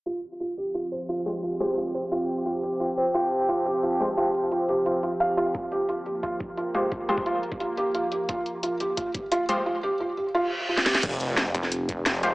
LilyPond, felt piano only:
\new Staff \with { instrumentName = "Felt piano" } { \time 4/4 \key c \phrygian \tempo 4 = 175 f'8 r8 f'8 g'8 f'8 c''8 f'8 r8 | f'8 g'8 f'8 c''8 f'8 r8 f'8 g'8 | f'8 c''8 f'8 r8 f'8 g'8 f'8 c''8 | f'8 r8 f'8 g'8 f'8 f'8 f''8 f'8 |
f'8 g'8 f'8 g'8 f'8 r8 f'8 g'8 | f'8 g'8 f'8 r8 f'8 g'8 f'8 g'8 | f'8 r8 f'8 g'8 f'8 g'8 f'8 r8 | f'8 g'8 f'8 g'8 f'8 r8 f'8 g'8 |
r1 | }